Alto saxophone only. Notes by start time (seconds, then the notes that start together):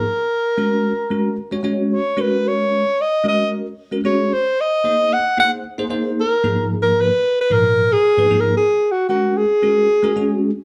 Already playing: A#4
1.93 C#5
2.21 B4
2.48 C#5
3.01 D#5
3.28 D#5
4.05 C#5
4.33 C5
4.60 D#5
5.13 F#5
5.40 F#5
6.20 A#4
6.82 A#4
7.01 B4
7.41 B4
7.53 A#4
7.93 G#4
8.40 A#4
8.57 G#4
8.92 F#4
9.09 F#4
9.37 G#4